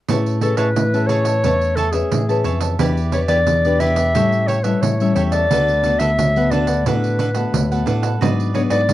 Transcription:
0.08 A2 A3 C#4 G#4 B4 C#5 E5 A5, pandeiro
0.26 pandeiro
0.41 C#4 G#4 A4 B4 C#5 E5 A5, pandeiro
0.57 A2 G#4 B4 C#5 E5 A5, pandeiro
0.76 A2 E3, pandeiro
0.93 C#4 G#4 B4 C#5 E5 A5, pandeiro
1.07 G#4 C#5 E5 A5, pandeiro
1.25 C#5 E5 A5, pandeiro
1.43 E2 A3 C#4 B4 C#5 E5 A5, pandeiro
1.61 pandeiro
1.76 G#4 A4 C#5 E5 A5, pandeiro
1.92 C#4 G#4 B4 C#5 E5, pandeiro
2.11 A2 E3, pandeiro
2.29 C#4 G#4 B4 C#5 E5 A5, pandeiro
2.44 F2 G#4 C#5 E5 A5, pandeiro
2.60 C#5 E5 A5, pandeiro
2.79 E2 E3 D4 E4 G4 B4 D5, pandeiro
2.97 pandeiro
3.12 D4 E4 G4 B4 C#5 D5, pandeiro
3.28 E2 E4 G4 B4 D5, pandeiro
3.47 E2 B2, pandeiro
3.65 D4 G4 B4 D5, pandeiro
3.80 E4 G4 B4 D5 E5, pandeiro
3.96 G4 B4 D5, pandeiro
4.15 A2 G3 C#4 E4 G4 A4 C#5 E5, pandeiro
4.32 pandeiro
4.47 G4 A4 C#5 E5, pandeiro
4.64 G3 C#4 E4 A4 B4 C#5 E5, pandeiro
4.82 A2 E3 C#5, pandeiro
5.00 G3 C#4 E4 A4 C#5 E5, pandeiro
5.15 E2 G4 A4 C#5 E5, pandeiro
5.32 A4 C#5 D5 E5, pandeiro
5.51 D2 D3 A3 B3 D4 F#4 A4 B4 F#5, pandeiro
5.68 pandeiro
5.84 A3 B3 D4 F#4 A4 B4 F#5, pandeiro
5.99 D2 D4 A4 B4 E5 F#5, pandeiro
6.18 D2 A2, pandeiro
6.36 A3 B3 F#4 A4 B4 F#5, pandeiro
6.51 D4 A4 B4 D5 F#5, pandeiro
6.67 A4 B4 F#5, pandeiro
6.86 A2 D3 A3 B3 D4 F#4 A4 B4 F#5, pandeiro
7.04 pandeiro
7.19 D4 A4 B4 F#5, pandeiro
7.35 A3 B3 F#4 A4 B4 F#5, pandeiro
7.53 D2 A2, pandeiro
7.71 A3 B3 F#4 A4 B4 F#5, pandeiro
7.86 A2 D4 A4 B4 F#5, pandeiro
8.02 A4 B4 F#5, pandeiro
8.21 G#2 F#3 B3 D4 F#4 G#4 B4 D5, pandeiro
8.40 pandeiro
8.54 F#3 B3 D4 F#4 G#4 B4 C#5 D5, pandeiro
8.70 G#2 F#4 G#4 B4 D5, pandeiro
8.88 G#2, pandeiro

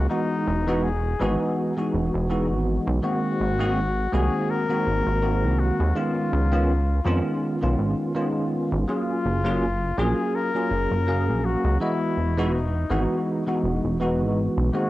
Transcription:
0.09 E3 G#3 B3 D#4 F#4
0.48 E1
0.67 E3 G#3 B3 D#4 F#4
0.83 G#4
1.20 G#1 E3 G#3 B3 D#4 F#4
1.77 E3 G#3 B3 D#4 F#4
1.94 E1
2.14 E1
2.29 E3 G#3 B3 D#4 F#4
2.50 G#1
2.87 B1
3.02 D#3 G#3 A#3 C4 F#4
3.40 G#1
3.59 D#3 G#3 A#3 C4 F#4
4.12 C2 D#3 G#3 A#3 C4 F#4 G#4
4.50 A#4
4.69 D#3 G#3 A#3 C4 F#4
4.87 G#1
5.07 G#1
5.22 D#3 G#3 A#3 C4 F#4
5.43 C2
5.59 F#4
5.80 D#2
5.95 D#3 G#3 B3 C#4 F4
6.33 C#2
6.51 D#3 G#3 B3 C#4 F4
7.05 F2 D#3 G#3 B3 C#4 F4
7.61 B1 D#3 G#3 B3 C#4 F4
7.79 G#1
8.15 D#3 G#3 B3 C#4 F4
8.72 G#1
8.88 F#3 A#3 C#4 F4 G#4
9.25 F#1
9.44 F#3 A#3 C#4 F4 G#4
9.98 A#1 F#3 A#3 C#4 F4 G#4
10.35 A#4
10.54 F#3 A#3 C#4 F4 G#4
10.71 F#1
10.91 F#1
11.07 F#3 A#3 C#4 G#4 F5
11.28 A#1
11.45 F#4
11.64 C#2
11.80 E3 G#3 B3 E4 F#4 D#5
12.17 E1
12.37 E3 G#3 B3 D#4 F#4
12.54 D#4
12.90 G#1 E3 G#3 B3 D#4 F#4
13.47 E3 G#3 B3 D#4 F#4
13.64 E1
13.84 E1
14.00 E3 G#3 B3 D#4 F#4
14.20 G#1
14.57 B1
14.73 D#3 G#3 A#3 C4 F#4

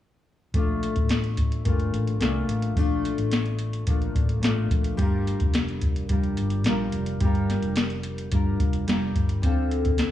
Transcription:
0.54 A#1 A3 D4 F4, kick, closed hi-hat
0.83 closed hi-hat
0.96 A1, kick, closed hi-hat
1.09 snare, closed hi-hat
1.24 closed hi-hat
1.37 kick, closed hi-hat
1.52 closed hi-hat
1.65 G1 A#2 A3 D4 F4, kick, closed hi-hat
1.80 closed hi-hat
1.93 A1, closed hi-hat
2.07 closed hi-hat
2.20 C2 A#2 A3 D4 F4, snare, closed hi-hat
2.48 A1, closed hi-hat
2.62 closed hi-hat
2.76 A#1 A3 D4 F4, kick, closed hi-hat
3.05 closed hi-hat
3.18 A1, closed hi-hat
3.32 snare, closed hi-hat
3.46 closed hi-hat
3.59 closed hi-hat
3.73 closed hi-hat
3.86 A#1 A#2 A3 D4 F4, kick, closed hi-hat
4.02 closed hi-hat
4.15 A1, kick, closed hi-hat
4.29 closed hi-hat
4.42 A1 A#2 A3 D4 F4, snare, closed hi-hat
4.71 A#1, kick, closed hi-hat
4.84 closed hi-hat
4.97 G1 G3 D4 F4, kick, closed hi-hat
5.02 A#4
5.27 closed hi-hat
5.40 F1, kick, closed hi-hat
5.54 snare, closed hi-hat
5.68 closed hi-hat
5.81 kick, closed hi-hat
5.96 closed hi-hat
6.09 F1 G3 D4 F4 A#4, kick, closed hi-hat
6.23 closed hi-hat
6.37 G1, closed hi-hat
6.50 closed hi-hat
6.64 A#1 G3 D4 F4, snare, closed hi-hat
6.68 A#4
6.92 F1, closed hi-hat
7.06 closed hi-hat
7.20 G1 G3 D4 F4, kick, closed hi-hat
7.25 A#4
7.35 closed hi-hat
7.50 snare, closed hi-hat
7.62 F1, closed hi-hat
7.76 snare, closed hi-hat
7.90 closed hi-hat
8.03 closed hi-hat
8.18 closed hi-hat
8.31 G1 G3 D4 F4 A#4, kick, closed hi-hat
8.60 F1, kick, closed hi-hat
8.73 closed hi-hat
8.87 F1 G3 D4 F4 A#4, snare, closed hi-hat
9.15 G1, kick, closed hi-hat
9.29 closed hi-hat
9.42 D2 D3 C4 F4, kick, closed hi-hat
9.46 A4
9.71 closed hi-hat
9.85 C2, kick, closed hi-hat
9.98 snare, closed hi-hat

